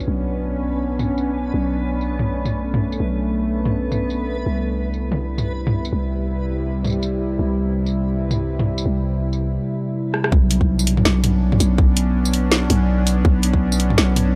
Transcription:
Already playing: synth drone B3 C#4 D4, synth texture B3 B4
0.00 tambourine
0.08 808-style bass B1
0.99 mid tom, tambourine
1.18 tambourine
1.54 808-style bass B1, synth drone A3
2.01 tambourine
2.19 mid tom
2.45 mid tom, tambourine
2.74 mid tom
2.92 tambourine
3.00 808-style bass B1
3.65 mid tom
3.92 mid tom, tambourine
4.10 tambourine
4.46 808-style bass C2, synth drone C3 G3 E4
4.94 tambourine
5.12 mid tom
5.38 mid tom, tambourine
5.67 mid tom
5.85 tambourine
5.93 808-style bass C2
6.85 mid tom, tambourine
6.87 tambourine
6.90 tambourine
6.92 tambourine
7.03 tambourine
7.39 808-style bass C2
7.86 tambourine
8.31 mid tom, tambourine
8.59 mid tom
8.78 tambourine
8.86 808-style bass C2
9.33 tambourine
10.14 cross-stick
10.24 cross-stick
10.32 808-style bass B1, synth drone B3 C#4 D4, kick
10.51 closed hi-hat
10.61 kick
10.79 tambourine
10.87 closed hi-hat
10.97 mid tom
11.05 808-style bass B1, snare
11.24 closed hi-hat, mid tom
11.52 mid tom
11.60 808-style bass B1, closed hi-hat, tambourine
11.78 kick
11.97 closed hi-hat
12.25 tambourine
12.33 closed hi-hat
12.52 snare
12.70 808-style bass B1, closed hi-hat, mid tom
13.07 closed hi-hat, tambourine
13.25 808-style bass B1, kick
13.43 closed hi-hat
13.53 kick
13.72 tambourine
13.80 closed hi-hat
13.90 mid tom
13.98 808-style bass B1, snare
14.16 closed hi-hat, mid tom

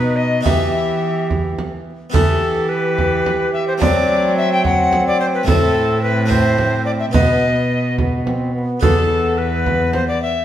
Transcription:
Already playing: harpsichord B2 B3 D#4 F#4, cello B2, trombone D#4, recorder B4
0.16 recorder D#5
0.41 harpsichord E3 B3 E4 G4, cello E3, recorder E5
0.46 trombone G4, frame drum
1.30 frame drum
1.59 frame drum
2.10 harpsichord E3 B3 E4 G4, recorder A4
2.14 cello E3, trombone G4, frame drum
2.69 recorder B4
2.98 frame drum
3.26 frame drum
3.53 recorder E5
3.68 recorder C5
3.78 harpsichord F#3 A3 C4 F#4, trombone C4, recorder D5, frame drum
3.82 cello F#3
4.37 recorder E5
4.52 recorder G5
4.64 trombone C4, recorder F#5, frame drum
4.93 frame drum
5.07 recorder D5
5.20 recorder C5
5.34 recorder B4
5.43 harpsichord A3 C4 E4, recorder A4
5.47 harpsichord A2, cello A2, trombone C4, frame drum
6.02 recorder B4
6.26 harpsichord A3 C4 E4
6.30 trombone C4, recorder C5, frame drum
6.58 frame drum
6.86 recorder D5
7.00 recorder E5
7.11 cello B2, harpsichord B2 B3 B4, trombone B3, recorder D#5, frame drum
7.98 trombone B3, frame drum
8.26 trombone C4, frame drum
8.54 trombone B3
8.80 cello E2, harpsichord E2 B3 B4, trombone B3, recorder A4, frame drum
9.38 recorder B4
9.66 frame drum
9.93 recorder C5, frame drum
10.08 recorder D5
10.22 recorder E5

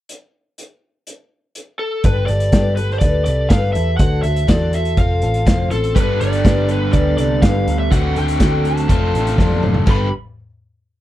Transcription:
0.09 closed hi-hat
0.58 closed hi-hat
1.07 closed hi-hat
1.55 closed hi-hat
1.79 lead electric guitar A4
2.04 picked electric bass G1, twelve-string acoustic guitar G3 D4 G4 A4 B4, lead electric guitar B4, kick, closed hi-hat
2.26 picked electric bass G1, twelve-string acoustic guitar A4 B4, lead electric guitar D5, closed hi-hat
2.32 twelve-string acoustic guitar G4
2.40 closed hi-hat
2.52 picked electric bass G1, twelve-string acoustic guitar G3 D4 G4 A4 B4, kick, snare, closed hi-hat
2.76 twelve-string acoustic guitar G4 A4 B4, lead electric guitar B4, closed hi-hat
2.90 lead electric guitar C5, snare
2.99 picked electric bass D2, twelve-string acoustic guitar D4 G4 B4, lead electric guitar D5, kick, closed hi-hat
3.03 twelve-string acoustic guitar A4
3.25 picked electric bass C2, twelve-string acoustic guitar G4 A4 B4, lead electric guitar D5, closed hi-hat
3.49 picked electric bass G1, twelve-string acoustic guitar G3 D4 G4 A4 B4, lead electric guitar F5, kick, snare, closed hi-hat
3.73 picked electric bass E2, twelve-string acoustic guitar A4 B4, lead electric guitar E5, closed hi-hat
3.77 twelve-string acoustic guitar G4
3.97 picked electric bass D2, twelve-string acoustic guitar D3 D4 F#4 C5, lead electric guitar F#5, kick, closed hi-hat
4.01 twelve-string acoustic guitar A4
4.23 picked electric bass D2, twelve-string acoustic guitar A4 C5, lead electric guitar E5, closed hi-hat
4.27 twelve-string acoustic guitar F#4
4.36 closed hi-hat
4.47 picked electric bass E2, twelve-string acoustic guitar D3 D4 F#4 A4 C5, lead electric guitar D5, kick, snare, closed hi-hat
4.71 twelve-string acoustic guitar F#4 A4 C5, lead electric guitar E5, closed hi-hat
4.85 closed hi-hat
4.97 picked electric bass F1, twelve-string acoustic guitar C4 F4 A4 C5, lead electric guitar F5, kick, closed hi-hat
5.22 picked electric bass A1, twelve-string acoustic guitar C4 F4 A4 C5, closed hi-hat
5.34 closed hi-hat
5.45 picked electric bass F1, twelve-string acoustic guitar D3 F3 C4 F4 A4 C5, kick, snare, closed hi-hat
5.70 picked electric bass A1, twelve-string acoustic guitar C4 F4 A4 C5, lead electric guitar A4, closed hi-hat
5.84 closed hi-hat
5.95 picked electric bass G1, overdriven electric guitar G2 D3 G3 B3 D4, twelve-string acoustic guitar G3 D4 G4 A4 B4, lead electric guitar B4, kick, closed hi-hat
5.99 overdriven electric guitar G4
6.20 picked electric bass G1, twelve-string acoustic guitar G4 A4 B4, lead electric guitar D5, closed hi-hat
6.33 closed hi-hat
6.44 picked electric bass G1, twelve-string acoustic guitar G3 D4 G4 A4 B4, kick, snare, closed hi-hat
6.68 twelve-string acoustic guitar G4 A4 B4, lead electric guitar B4, closed hi-hat
6.91 picked electric bass D2, twelve-string acoustic guitar D4 G4 A4 B4, lead electric guitar D5, kick, closed hi-hat
7.17 picked electric bass C2, twelve-string acoustic guitar G4 A4 B4, lead electric guitar D5, closed hi-hat
7.42 picked electric bass G1, twelve-string acoustic guitar G3 D4 G4 A4 B4, lead electric guitar F5, kick, snare, closed hi-hat
7.67 picked electric bass D2, twelve-string acoustic guitar G4 A4 B4, closed hi-hat
7.79 lead electric guitar E5
7.91 picked electric bass D2, overdriven electric guitar D3 A3 C4 F#4, twelve-string acoustic guitar D3 D4 F#4 A4 C5, lead electric guitar F#5, kick, closed hi-hat
8.16 picked electric bass D2, twelve-string acoustic guitar F#4 A4 C5, lead electric guitar G5, closed hi-hat
8.28 closed hi-hat
8.40 picked electric bass D2, twelve-string acoustic guitar D3 D4 F#4 A4 C5, kick, snare, closed hi-hat
8.64 twelve-string acoustic guitar F#4 A4 C5, lead electric guitar A5, closed hi-hat
8.77 closed hi-hat
8.88 picked electric bass F1, overdriven electric guitar F2 C3 F3 A3 C4 F4, twelve-string acoustic guitar C4 D4 A4 C5, kick, closed hi-hat
9.14 picked electric bass A1, twelve-string acoustic guitar C4 D4 A4 C5, closed hi-hat
9.27 closed hi-hat
9.38 picked electric bass F1, twelve-string acoustic guitar D3 F3 C4 D4 A4 C5, kick, snare
9.50 high tom
9.63 picked electric bass F#1, twelve-string acoustic guitar C4 D4 A4 C5, mid tom
9.74 floor tom
9.86 picked electric bass G1, overdriven electric guitar G2 D3 G3 B3 D4 G4, twelve-string acoustic guitar G3 D4 G4 A4 B4, kick, crash
9.91 lead electric guitar B5

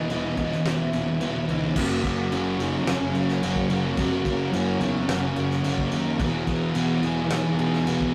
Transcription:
Already playing: distorted electric guitar E3, clean electric guitar B3, ambient pad E4 B4 G#5 D#6, overdriven electric guitar G#4, soft synth lead D#5
0.09 picked electric bass E1, distorted electric guitar E2 B2 E3, overdriven electric guitar E3 B3 E4 G#4, clean electric guitar E3, crash
0.36 distorted electric guitar E2 B2 E3, overdriven electric guitar E3 B3 E4 G#4, soft synth lead D#5, kick, crash
0.50 distorted electric guitar B2 E3, overdriven electric guitar B3 E4 G#4, snare
0.64 picked electric bass E1, clean electric guitar B3, soft synth lead E5, snare, crash
0.78 distorted electric guitar B2 E3, overdriven electric guitar B3 E4 G#4
0.92 picked electric bass E1, distorted electric guitar E2 B2 E3, overdriven electric guitar E3 B3 E4 G#4, crash
1.05 distorted electric guitar E3, overdriven electric guitar B3 E4 G#4
1.10 distorted electric guitar B2
1.20 picked electric bass E1, distorted electric guitar E2 B2 E3, overdriven electric guitar E3 B3 E4 G#4, clean electric guitar E3, crash
1.35 distorted electric guitar B2 E3
1.47 picked electric bass C#2, overdriven electric guitar E3 B3 E4 G#4, clean electric guitar D#4, crash
1.61 distorted electric guitar B2 E3, overdriven electric guitar B3 E4 G#4
1.75 picked electric bass F#1, distorted electric guitar F#2 C#3 F#3, overdriven electric guitar F#3 A#3 C#4 F#4, clean electric guitar A#3, ambient pad A#4 C#5 F#5 C#6, kick, crash
1.80 soft synth lead F#4
2.04 picked electric bass F#1, distorted electric guitar C#3 F#3, clean electric guitar A#3, kick, crash
2.31 picked electric bass F#1, distorted electric guitar F#2 C#3 F#3, clean electric guitar C#4, crash
2.59 picked electric bass F#1, distorted electric guitar C#3 F#3, soft synth lead D#4, clean electric guitar F#4, crash
2.87 picked electric bass F#1, clean electric guitar C#4, soft synth lead C#4, snare, crash
3.14 picked electric bass F#1, soft synth lead C#4, clean electric guitar F#4, crash
3.28 snare
3.42 picked electric bass F#1, distorted electric guitar F#2 C#3 F#3, clean electric guitar A#3, soft synth lead A#3, crash
3.56 kick
3.69 picked electric bass F#1, distorted electric guitar C#3 F#3, clean electric guitar A#3, crash
3.97 picked electric bass F#1, distorted electric guitar F#2 C#3 F#3, clean electric guitar A#3, soft synth lead F#4, ambient pad D#6, kick, crash
4.25 picked electric bass F#1, distorted electric guitar C#3 F#3, clean electric guitar A#3, kick, crash
4.52 picked electric bass F#1, distorted electric guitar F#2 C#3 F#3, clean electric guitar C#4, soft synth lead E4, crash
4.80 picked electric bass E2, distorted electric guitar C#3 F#3, soft synth lead D#4, clean electric guitar F#4, crash
5.09 picked electric bass F#1, clean electric guitar C#4, soft synth lead C#4, snare, crash
5.36 picked electric bass F#1, clean electric guitar F#4, crash
5.51 snare
5.63 picked electric bass F#1, distorted electric guitar F#2 C#3 F#3, clean electric guitar A#3, soft synth lead C#4, crash
5.78 kick
5.91 picked electric bass D#2, distorted electric guitar C#3 F#3, clean electric guitar A#3, crash
6.18 picked electric bass E1, distorted electric guitar E2 B2 E3, overdriven electric guitar E3 B3 E4 G#4, clean electric guitar E3, soft synth lead G#4, ambient pad B4 G#5, kick, crash
6.47 picked electric bass E1, distorted electric guitar B2 E3, clean electric guitar B3, kick, crash
6.74 picked electric bass E1, distorted electric guitar E2 B2 E3, crash
7.02 picked electric bass E1, distorted electric guitar B2 E3, soft synth lead E4, clean electric guitar G#4, crash
7.30 picked electric bass E1, soft synth lead D#4, snare, crash
7.58 picked electric bass E1, soft synth lead D#4, clean electric guitar G#4, crash
7.73 snare
7.86 picked electric bass E1, distorted electric guitar E2 B2 E3, clean electric guitar B3, soft synth lead B3, crash
8.01 kick

